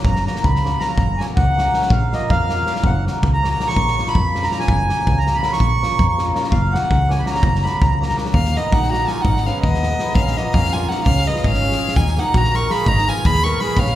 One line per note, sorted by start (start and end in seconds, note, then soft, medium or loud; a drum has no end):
0.04 0.28 F#1 loud
0.04 0.24 A#5 medium
0.04 kick loud
0.16 snare soft
0.26 0.41 A#3 medium
0.26 0.41 C#4 medium
0.26 0.42 F#4 medium
0.26 0.42 A#4 medium
0.26 0.43 A#5 medium
0.26 snare soft
0.36 snare soft
0.44 0.76 C#2 medium
0.44 0.82 B5 medium
0.44 kick loud
0.56 snare soft
0.64 0.78 A#3 medium
0.64 0.79 C#4 medium
0.64 0.79 F#4 medium
0.64 0.79 A#4 medium
0.64 snare soft
0.80 0.95 A#3 medium
0.80 0.95 C#4 medium
0.80 0.96 F#4 medium
0.80 0.96 A#4 medium
0.80 1.20 A#5 medium
0.80 snare soft
0.97 1.21 F#1 medium
0.97 kick loud
1.17 1.34 A#3 medium
1.17 1.34 C#4 medium
1.17 1.35 F#4 medium
1.17 1.26 G#5 medium
1.17 snare soft
1.22 1.35 A#4 medium
1.36 1.70 C#2 medium
1.36 1.92 F#5 medium
1.36 kick loud
1.57 1.71 A#3 medium
1.57 1.71 C#4 medium
1.57 1.71 F#4 medium
1.57 1.72 A#4 medium
1.57 snare soft
1.74 1.88 A#3 medium
1.74 1.88 C#4 medium
1.74 1.89 F#4 medium
1.74 1.89 A#4 medium
1.74 snare soft
1.82 snare soft
1.90 2.14 A#1 loud
1.90 2.14 F5 medium
1.90 kick loud
2.13 2.27 A#3 medium
2.13 2.27 C#4 medium
2.13 2.28 F4 medium
2.13 2.28 A#4 medium
2.13 2.32 D#5 medium
2.13 snare soft
2.29 2.62 F2 medium
2.29 2.85 F5 medium
2.29 kick loud
2.49 2.64 A#3 medium
2.49 2.64 C#4 medium
2.49 2.64 F4 medium
2.49 2.65 A#4 medium
2.49 snare soft
2.66 2.80 A#3 medium
2.66 2.80 C#4 medium
2.66 2.81 F4 medium
2.66 2.81 A#4 medium
2.66 snare soft
2.75 snare soft
2.84 3.07 F#1 loud
2.84 3.05 F#5 medium
2.84 kick loud
3.05 3.19 A#3 medium
3.05 3.20 C#4 medium
3.05 3.20 F#4 medium
3.05 3.21 A#4 medium
3.05 snare soft
3.22 3.55 C#2 loud
3.22 kick loud
3.33 3.49 A#5 loud
3.42 3.56 A#3 medium
3.42 3.56 C#4 medium
3.42 3.57 F#4 medium
3.42 3.57 A#4 medium
3.42 snare soft
3.51 3.68 A#5 loud
3.60 3.73 A#3 medium
3.60 3.74 C#4 medium
3.60 3.74 F#4 medium
3.60 3.74 A#4 medium
3.60 snare soft
3.68 4.08 C#6 loud
3.68 snare soft
3.76 4.00 A#1 loud
3.76 kick medium
3.88 snare soft
3.97 4.12 A#3 medium
3.97 4.12 C#4 medium
3.97 4.13 F4 medium
3.97 4.13 A#4 medium
3.97 snare soft
4.06 4.45 B5 loud
4.06 snare soft
4.15 4.47 F2 medium
4.15 kick medium
4.34 4.48 A#3 medium
4.34 4.49 C#4 medium
4.34 4.49 F4 medium
4.34 4.49 A#4 medium
4.34 snare soft
4.43 4.59 A#5 loud
4.43 snare soft
4.51 4.65 A#3 medium
4.51 4.65 C#4 medium
4.51 4.66 F4 medium
4.51 4.66 A#4 medium
4.51 snare soft
4.59 5.19 G#5 loud
4.59 snare soft
4.68 4.91 F#1 loud
4.68 kick loud
4.89 5.04 A#3 medium
4.89 5.04 C#4 medium
4.89 5.05 F#4 medium
4.89 5.05 A#4 medium
4.89 snare soft
5.07 5.39 C#2 medium
5.07 kick loud
5.18 5.36 A#5 loud
5.27 5.41 A#3 medium
5.27 5.41 C#4 medium
5.27 5.41 F#4 medium
5.27 5.42 A#4 medium
5.27 snare soft
5.35 5.53 B5 loud
5.42 5.56 A#3 medium
5.42 5.57 C#4 medium
5.42 5.57 F#4 medium
5.42 5.58 A#4 medium
5.42 snare soft
5.53 6.07 C#6 loud
5.53 snare soft
5.60 5.84 A#1 loud
5.60 kick medium
5.81 5.96 A#3 medium
5.81 5.96 C#4 medium
5.81 5.97 F4 medium
5.81 5.97 A#4 medium
5.81 snare soft
5.99 6.31 F2 medium
5.99 kick medium
6.08 6.26 C#6 medium
6.18 6.32 A#3 medium
6.18 6.32 C#4 medium
6.18 6.32 F4 medium
6.18 6.33 A#4 medium
6.18 snare soft
6.34 6.48 A#3 medium
6.34 6.49 C#4 medium
6.34 6.49 F4 medium
6.34 6.49 A#4 medium
6.34 snare soft
6.44 snare soft
6.50 6.75 F#1 loud
6.50 6.73 F5 medium
6.50 kick loud
6.72 6.87 A#3 medium
6.72 6.88 C#4 medium
6.72 6.88 F#4 medium
6.72 6.88 A#4 medium
6.72 7.11 F#5 medium
6.72 snare soft
6.91 7.23 C#2 loud
6.91 kick medium
7.09 7.23 A#3 medium
7.09 7.24 C#4 medium
7.09 7.24 F#4 medium
7.09 7.24 A#4 medium
7.09 7.21 G#5 medium
7.09 snare soft
7.19 7.26 B5 medium
7.26 7.40 A#3 medium
7.26 7.40 C#4 medium
7.26 7.40 F#4 medium
7.26 7.41 A#4 medium
7.26 7.66 A#5 medium
7.26 snare soft
7.35 snare soft
7.43 7.66 F#1 loud
7.43 kick loud
7.55 snare soft
7.63 7.78 A#3 medium
7.63 7.78 C#4 medium
7.63 7.79 F#4 medium
7.63 7.79 A#4 medium
7.63 7.82 B5 medium
7.63 snare soft
7.80 8.13 C#2 medium
7.80 7.99 A#5 medium
7.80 kick loud
8.01 8.14 A#3 medium
8.01 8.14 C#4 medium
8.01 8.15 F#4 medium
8.01 8.16 A#4 medium
8.01 8.16 A#5 medium
8.01 snare soft
8.09 snare soft
8.17 8.31 A#3 medium
8.17 8.31 C#4 medium
8.17 8.32 F#4 medium
8.17 8.32 A#4 medium
8.17 snare soft
8.25 snare soft
8.32 8.57 D#2 loud
8.32 8.53 A#3 medium
8.32 8.59 F5 medium
8.32 kick medium
8.45 snare soft
8.54 8.69 A#3 medium
8.54 8.72 B3 medium
8.54 8.70 D#4 medium
8.54 8.70 F#4 medium
8.54 8.70 A#4 medium
8.54 8.75 D#5 medium
8.54 snare soft
8.72 9.03 A#1 medium
8.72 8.92 D#4 medium
8.72 8.91 F#5 loud
8.72 kick loud
8.83 snare soft
8.90 9.05 A#3 medium
8.90 9.05 D#4 medium
8.90 9.07 F#4 medium
8.90 9.06 F#4 medium
8.90 9.06 A#4 medium
8.90 9.09 A#5 medium
8.90 snare soft
9.07 9.21 A#3 medium
9.07 9.22 D#4 medium
9.07 9.24 F4 medium
9.07 9.22 F#4 medium
9.07 9.23 A#4 medium
9.07 9.23 G#5 medium
9.07 snare soft
9.21 9.48 G#1 medium
9.21 9.45 D#4 medium
9.21 9.48 F#5 medium
9.21 kick loud
9.37 snare soft
9.46 9.60 B3 medium
9.46 9.63 C#4 medium
9.46 9.61 D#4 medium
9.46 9.61 G#4 medium
9.46 9.61 B4 medium
9.46 9.62 F5 medium
9.46 snare soft
9.62 9.95 D#2 medium
9.62 10.13 B3 medium
9.62 10.16 D#5 medium
9.62 kick loud
9.74 snare soft
9.82 9.96 B3 medium
9.82 9.96 D#4 medium
9.82 9.96 G#4 medium
9.82 9.97 B4 medium
9.82 snare soft
9.99 10.13 B3 medium
9.99 10.13 D#4 medium
9.99 10.13 G#4 medium
9.99 10.14 B4 medium
9.99 snare soft
10.15 10.38 A#1 loud
10.15 10.37 C#4 medium
10.15 10.39 F5 medium
10.15 kick loud
10.27 snare soft
10.36 10.51 A#3 medium
10.36 10.54 B3 medium
10.36 10.51 C#4 medium
10.36 10.51 F4 medium
10.36 10.52 A#4 medium
10.36 10.55 D#5 medium
10.36 snare soft
10.53 10.85 F2 medium
10.53 10.73 C#4 medium
10.53 10.75 F5 loud
10.53 kick medium
10.65 snare soft
10.72 10.87 A#3 medium
10.72 10.87 C#4 medium
10.72 10.89 F4 medium
10.72 10.88 F4 medium
10.72 10.88 A#4 medium
10.72 10.90 G#5 medium
10.72 snare soft
10.88 11.03 A#3 medium
10.88 11.03 C#4 medium
10.88 11.06 D#4 medium
10.88 11.03 F4 medium
10.88 11.04 A#4 medium
10.88 11.04 F#5 medium
10.88 snare soft
11.05 11.29 C#2 loud
11.05 11.25 C#4 medium
11.05 11.29 F5 loud
11.05 kick loud
11.16 snare soft
11.26 11.62 G#3 medium
11.26 11.44 B3 medium
11.26 11.41 C#4 medium
11.26 11.42 F4 medium
11.26 11.42 G#4 medium
11.26 11.47 D#5 medium
11.26 snare soft
11.36 snare soft
11.43 11.75 G#1 medium
11.43 11.96 C#4 medium
11.43 11.99 F5 loud
11.43 kick loud
11.54 snare soft
11.63 11.78 G#3 medium
11.63 11.77 C#4 medium
11.63 11.77 F4 medium
11.63 11.77 G#4 medium
11.72 snare soft
11.79 12.01 G#3 medium
11.79 11.93 C#4 medium
11.79 11.93 F4 medium
11.79 11.94 G#4 medium
11.88 snare soft
11.96 12.19 D#2 medium
11.96 12.14 D#4 medium
11.96 12.20 G#5 medium
11.96 kick loud
12.07 snare soft
12.16 12.31 A#3 medium
12.16 12.34 D#4 medium
12.16 12.31 D#4 medium
12.16 12.31 F#4 medium
12.16 12.32 A#4 medium
12.16 12.39 F#5 medium
12.16 snare soft
12.34 12.66 A#1 medium
12.34 12.54 F#4 medium
12.34 12.57 A#5 loud
12.34 kick loud
12.44 snare soft
12.54 12.67 A#3 medium
12.54 12.67 D#4 medium
12.54 12.67 F#4 medium
12.54 12.70 A#4 medium
12.54 12.68 A#4 medium
12.54 12.73 C#6 medium
12.54 snare soft
12.70 12.83 A#3 medium
12.70 12.84 D#4 medium
12.70 12.84 F#4 medium
12.70 12.86 G#4 medium
12.70 12.84 A#4 medium
12.70 12.90 B5 loud
12.70 snare soft
12.86 13.09 G#1 medium
12.86 13.07 D#4 medium
12.86 13.10 A#5 loud
12.86 kick loud
12.98 snare soft
13.07 13.21 B3 medium
13.07 13.21 D#4 medium
13.07 13.24 F4 medium
13.07 13.21 G#4 medium
13.07 13.22 B4 medium
13.07 13.28 G#5 medium
13.07 snare soft
13.25 13.56 D#2 medium
13.25 13.45 G#4 medium
13.25 13.45 B5 loud
13.25 kick loud
13.35 snare soft
13.43 13.57 B3 medium
13.43 13.57 D#4 medium
13.43 13.57 G#4 medium
13.43 13.60 A#4 medium
13.43 13.57 B4 medium
13.43 13.62 C#6 medium
13.43 snare soft
13.59 13.73 B3 medium
13.59 13.73 D#4 medium
13.59 13.73 G#4 medium
13.59 13.78 G#4 medium
13.59 13.73 B4 medium
13.59 13.80 B5 medium
13.59 snare soft
13.77 13.95 A#1 loud
13.77 13.95 C#4 medium
13.77 13.95 F5 loud
13.77 kick medium
13.86 snare soft